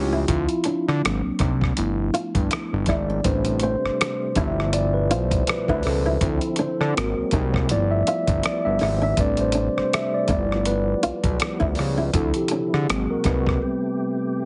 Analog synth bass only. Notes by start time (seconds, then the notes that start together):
Already playing: C#2
0.29 D2
0.68 D3
0.88 D3
1.05 G#1
1.26 C2
1.41 C2
1.79 G1
2.36 G1
2.73 G1
2.88 G#1
3.25 A1
3.84 G1
4.37 G1
5.12 B1
5.69 D2
5.86 C#2
6.22 D2
6.60 D3
6.81 D3
6.97 G#1
7.18 C2
7.33 C2
7.71 G1
8.29 G1
8.66 G1
8.82 G#1
9.18 A1
9.77 G1
10.30 G1
11.05 B1
11.25 B1
11.62 D2
11.79 C#2
12.14 D2
12.53 D3
12.74 D3
12.90 G#1
13.11 C2
13.26 C2